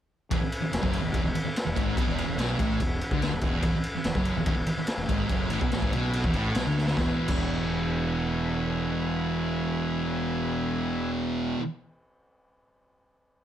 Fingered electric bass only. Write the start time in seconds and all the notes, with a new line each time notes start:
0.31 E1
0.41 muted fingered electric bass stroke
0.63 muted fingered electric bass stroke
0.73 E1
0.83 F#1
1.04 E1
1.14 E1
1.24 E1
1.36 muted fingered electric bass stroke
1.46 muted fingered electric bass stroke
1.66 E1
1.77 G#1
1.97 B1
2.08 E1
2.28 E1
2.38 B1
2.59 A1
2.80 E1
3.12 D2
3.32 E1
3.42 E1
3.63 E1
3.74 muted fingered electric bass stroke
3.95 muted fingered electric bass stroke
4.04 E1
4.15 F#1
4.35 E1
4.47 E1
4.56 E1
4.66 muted fingered electric bass stroke
4.77 muted fingered electric bass stroke
4.98 E1
5.09 G#1
5.30 F#1
5.50 A1
5.61 B1
5.73 A1
5.82 G#1
5.93 B1
6.24 E1
6.34 A1
6.55 B1
6.67 D2
6.97 E1
7.29 E1